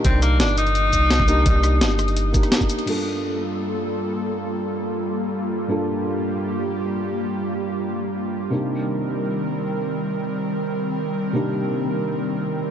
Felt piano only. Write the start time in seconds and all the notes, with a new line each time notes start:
Already playing: A#2 A#3 D4 D#4 G4
0.03 A#3 D#4 D5
1.27 A#3 D4 D#4 G4
1.44 A#3 D#4 D5
2.33 A#3 D4 D#4 G4
2.86 G2 A#3 D4 F4 A4
5.68 G2 A#3 D4 F4 A4
8.50 C3 A#3 D4 D#4 G4
11.33 C3 A#3 D4 D#4 G4